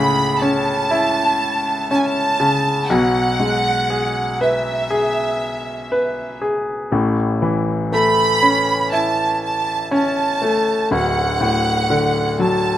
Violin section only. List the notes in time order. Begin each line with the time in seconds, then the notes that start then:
Already playing: B5
0.39 A5
1.91 A5
1.98 G#5
2.05 A5
2.91 F#5
4.43 E5
7.95 B5
8.94 A5
9.45 A5
9.95 A5
10.95 F#5
12.42 A5